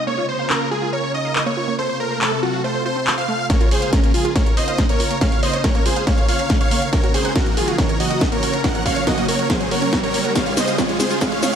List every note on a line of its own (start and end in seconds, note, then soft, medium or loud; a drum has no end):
0.07 1.77 C#3 medium
0.07 1.77 A#3 medium
0.07 0.11 A#3 medium
0.07 1.77 F4 medium
0.07 1.77 A#4 medium
0.07 0.26 C#5 medium
0.18 0.25 F4 medium
0.28 0.48 C5 medium
0.28 0.33 C#5 medium
0.39 0.49 F5 loud
0.50 0.57 C#4 medium
0.50 0.69 A#4 medium
0.50 clap loud
0.61 0.67 A#3 loud
0.71 0.81 F4 medium
0.71 0.91 G#4 medium
0.82 0.86 F4 loud
0.93 0.97 A#4 loud
0.93 1.12 C#5 medium
1.03 1.08 C#5 medium
1.14 1.18 C#5 medium
1.14 1.43 D#5 loud
1.25 1.35 F5 loud
1.36 1.42 A#4 medium
1.36 clap loud
1.46 1.50 A#3 loud
1.46 1.75 C#5 medium
1.57 1.67 F4 medium
1.68 1.72 A#3 medium
1.78 3.48 C3 medium
1.78 3.48 A3 medium
1.78 3.48 F4 medium
1.78 3.48 A4 medium
1.78 1.83 A4 medium
1.78 1.98 C5 loud
1.89 1.93 C5 medium
2.00 2.19 A#4 medium
2.00 2.04 C5 medium
2.11 2.15 C5 medium
2.21 2.41 A4 medium
2.21 2.28 A4 medium
2.21 clap loud
2.32 2.36 A3 loud
2.43 2.53 F4 medium
2.43 2.62 F#4 medium
2.53 2.58 F5 medium
2.64 2.71 A3 loud
2.64 2.83 C5 medium
2.75 2.79 C5 medium
2.86 2.96 F4 medium
2.86 3.15 C5 medium
2.96 3.03 C4 medium
3.07 3.14 A4 medium
3.07 clap loud
3.18 3.28 C5 loud
3.18 3.47 F5 medium
3.28 3.33 A3 medium
3.39 3.43 F5 medium
3.50 6.89 C#3 medium
3.50 6.89 A#3 medium
3.50 3.54 A#3 loud
3.50 6.89 F4 medium
3.50 3.69 A#4 medium
3.50 10.32 A#4 medium
3.50 3.69 C#5 loud
3.50 kick loud
3.50 snare soft
3.50 closed hi-hat medium
3.50 riser medium
3.61 3.67 F4 loud
3.61 closed hi-hat medium
3.71 3.91 G#4 medium
3.71 3.91 C5 medium
3.71 3.75 C#5 medium
3.71 open hi-hat loud
3.82 3.92 F5 loud
3.82 closed hi-hat medium
3.93 4.12 C#4 medium
3.93 4.00 C#4 medium
3.93 4.12 A#4 medium
3.93 kick loud
3.93 snare soft
3.93 closed hi-hat medium
4.04 4.10 A#3 loud
4.04 closed hi-hat medium
4.14 4.33 F4 medium
4.14 4.24 F4 medium
4.14 4.33 G#4 medium
4.14 open hi-hat loud
4.25 4.29 F4 loud
4.25 closed hi-hat soft
4.36 4.40 A#4 loud
4.36 4.55 A#4 medium
4.36 4.55 C#5 medium
4.36 kick loud
4.36 snare soft
4.36 closed hi-hat medium
4.46 4.50 C#5 medium
4.46 closed hi-hat medium
4.57 4.86 C5 medium
4.57 4.61 C#5 medium
4.57 4.86 D#5 loud
4.57 open hi-hat loud
4.68 4.78 F5 loud
4.68 closed hi-hat medium
4.78 4.85 A#4 medium
4.78 kick loud
4.78 snare soft
4.78 closed hi-hat medium
4.89 4.93 A#3 loud
4.89 5.18 A#4 medium
4.89 5.18 C#5 loud
4.89 closed hi-hat medium
5.00 5.10 F4 medium
5.00 open hi-hat loud
5.11 5.15 A#3 medium
5.11 closed hi-hat medium
5.21 5.25 A#4 loud
5.21 5.41 C#5 medium
5.21 5.41 F5 loud
5.21 kick loud
5.21 snare soft
5.21 closed hi-hat medium
5.32 5.36 C#5 medium
5.32 closed hi-hat soft
5.43 5.62 C5 medium
5.43 5.47 C#5 medium
5.43 5.62 D#5 medium
5.43 open hi-hat loud
5.53 5.58 C#5 medium
5.53 closed hi-hat medium
5.64 5.83 A#4 medium
5.64 5.71 A#4 medium
5.64 5.83 C#5 medium
5.64 kick loud
5.64 snare medium
5.64 closed hi-hat medium
5.75 5.79 A#3 loud
5.75 closed hi-hat medium
5.86 5.96 F4 medium
5.86 6.05 G#4 medium
5.86 6.05 C5 medium
5.86 open hi-hat loud
5.96 6.00 F5 medium
5.96 closed hi-hat medium
6.07 6.14 A#3 loud
6.07 6.26 C#5 medium
6.07 6.26 F5 medium
6.07 kick loud
6.07 snare medium
6.07 closed hi-hat medium
6.18 6.22 C#5 medium
6.18 closed hi-hat soft
6.28 6.39 F4 medium
6.28 6.57 C#5 medium
6.28 6.57 F5 loud
6.28 open hi-hat loud
6.39 6.46 C#4 medium
6.39 closed hi-hat medium
6.50 6.57 A#4 medium
6.50 kick loud
6.50 snare medium
6.50 closed hi-hat medium
6.61 6.71 C#5 loud
6.61 6.90 C#5 medium
6.61 6.90 F5 loud
6.61 closed hi-hat soft
6.71 6.75 A#3 medium
6.71 open hi-hat loud
6.82 6.86 F5 medium
6.82 closed hi-hat medium
6.93 11.55 C#3 medium
6.93 10.32 A#3 medium
6.93 6.97 A#3 loud
6.93 10.32 F#4 medium
6.93 7.12 A#4 medium
6.93 7.12 C#5 loud
6.93 kick loud
6.93 snare medium
6.93 closed hi-hat medium
7.04 7.10 F#4 loud
7.04 closed hi-hat soft
7.14 7.33 G#4 medium
7.14 7.33 C5 medium
7.14 7.18 C#5 medium
7.14 open hi-hat loud
7.25 7.35 F#5 loud
7.25 closed hi-hat soft
7.36 7.42 C#4 medium
7.36 7.55 F#4 medium
7.36 7.55 A#4 medium
7.36 kick loud
7.36 snare medium
7.36 closed hi-hat medium
7.46 7.53 A#3 loud
7.46 closed hi-hat soft
7.57 7.76 F4 medium
7.57 7.66 F#4 medium
7.57 7.76 G#4 medium
7.57 open hi-hat loud
7.68 7.72 F#4 loud
7.68 closed hi-hat soft
7.78 7.83 A#4 loud
7.78 7.98 A#4 medium
7.78 7.98 C#5 medium
7.78 kick loud
7.78 snare medium
7.78 closed hi-hat medium
7.89 7.93 C#5 medium
7.89 closed hi-hat medium
8.00 8.29 F#4 medium
8.00 8.04 C#5 medium
8.00 8.29 D#5 medium
8.00 open hi-hat loud
8.11 8.21 F#5 loud
8.11 closed hi-hat soft
8.21 8.28 A#4 medium
8.21 kick loud
8.21 snare medium
8.21 closed hi-hat medium
8.32 8.36 A#3 loud
8.32 8.61 A#4 medium
8.32 8.61 C#5 medium
8.32 closed hi-hat soft
8.43 8.53 F#4 medium
8.43 open hi-hat loud
8.53 8.58 A#3 medium
8.53 closed hi-hat soft
8.64 8.68 A#4 loud
8.64 8.83 A#4 medium
8.64 8.83 F#5 loud
8.64 kick loud
8.64 snare medium
8.64 closed hi-hat medium
8.75 8.79 C#5 medium
8.75 closed hi-hat soft
8.86 9.05 C#5 medium
8.86 8.90 C#5 medium
8.86 9.05 F5 medium
8.86 kick medium
8.86 open hi-hat loud
8.96 9.00 C#5 medium
8.96 closed hi-hat soft
9.07 9.26 F#4 medium
9.07 9.14 A#4 medium
9.07 9.26 D#5 medium
9.07 kick loud
9.07 snare medium
9.07 closed hi-hat medium
9.18 9.22 A#3 loud
9.18 closed hi-hat soft
9.28 9.39 F#4 medium
9.28 9.48 A#4 medium
9.28 9.48 C#5 medium
9.28 open hi-hat loud
9.39 9.43 F#5 medium
9.39 closed hi-hat soft
9.50 9.57 A#3 loud
9.50 9.69 G#4 medium
9.50 9.69 C5 medium
9.50 kick loud
9.50 snare medium
9.50 closed hi-hat medium
9.61 9.65 C#5 medium
9.61 closed hi-hat soft
9.71 9.82 F#4 medium
9.71 10.00 A#4 medium
9.71 10.00 C#5 loud
9.71 open hi-hat loud
9.82 9.89 C#4 medium
9.82 closed hi-hat soft
9.93 10.00 A#4 medium
9.93 kick loud
9.93 snare medium
9.93 closed hi-hat medium
10.03 10.32 A#4 medium
10.03 10.14 C#5 loud
10.03 10.32 C#5 loud
10.03 closed hi-hat soft
10.14 10.18 A#3 medium
10.14 open hi-hat loud
10.25 10.29 F#5 medium
10.25 closed hi-hat soft
10.36 11.55 G#3 medium
10.36 10.40 G#3 loud
10.36 11.55 F4 medium
10.36 11.55 G#4 medium
10.36 10.55 C#5 medium
10.36 10.55 F5 loud
10.36 kick loud
10.36 snare medium
10.36 closed hi-hat medium
10.36 shaker soft
10.46 10.53 F4 loud
10.46 closed hi-hat soft
10.57 10.76 C5 medium
10.57 10.61 C#5 medium
10.57 10.76 D#5 medium
10.57 snare medium
10.57 open hi-hat loud
10.57 shaker medium
10.68 10.78 F5 loud
10.68 closed hi-hat soft
10.68 shaker soft
10.78 10.85 C#4 medium
10.78 10.98 F4 medium
10.78 10.98 C#5 medium
10.78 kick loud
10.78 snare medium
10.78 closed hi-hat medium
10.78 shaker soft
10.89 10.96 G#3 loud
10.89 closed hi-hat soft
11.00 11.09 F4 medium
11.00 11.19 G#4 medium
11.00 11.19 C5 medium
11.00 snare medium
11.00 open hi-hat loud
11.00 shaker medium
11.11 11.15 F4 loud
11.11 closed hi-hat soft
11.11 shaker soft
11.21 11.25 G#4 loud
11.21 11.41 C#5 medium
11.21 11.41 F5 medium
11.21 kick loud
11.21 snare medium
11.21 closed hi-hat medium
11.21 shaker soft
11.32 11.36 C#5 medium
11.32 closed hi-hat soft
11.43 11.47 C#5 medium
11.43 11.55 C#5 medium
11.43 11.55 F5 loud
11.43 snare medium
11.43 open hi-hat loud
11.43 shaker medium